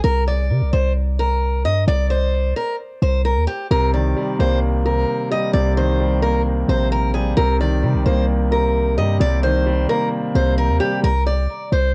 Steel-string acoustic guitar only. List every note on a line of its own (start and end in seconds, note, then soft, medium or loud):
0.04 0.23 A#4 loud
0.28 0.70 D5 medium
0.73 0.92 C5 medium
1.19 1.62 A#4 medium
1.65 1.83 D#5 medium
1.88 2.06 D5 loud
2.10 2.53 C5 medium
2.56 2.75 A#4 medium
3.02 3.21 C5 medium
3.25 3.44 A#4 medium
3.47 3.66 G4 medium
3.71 3.90 A#4 loud
3.94 4.37 D5 medium
4.40 4.58 C5 medium
4.86 5.29 A#4 medium
5.32 5.50 D#5 medium
5.54 5.72 D5 medium
5.77 6.20 C5 medium
6.22 6.41 A#4 medium
6.69 6.87 C5 medium
6.92 7.10 A#4 medium
7.14 7.33 G#4 medium
7.37 7.56 A#4 medium
7.60 8.03 D5 medium
8.05 8.24 C5 medium
8.52 8.95 A#4 medium
8.98 9.16 D#5 medium
9.21 9.39 D5 loud
9.43 9.86 C5 medium
9.89 10.08 A#4 medium
10.35 10.54 C5 medium
10.58 10.76 A#4 medium
10.80 10.99 G4 medium
11.04 11.22 A#4 loud
11.27 11.70 D5 medium
11.73 11.91 C5 medium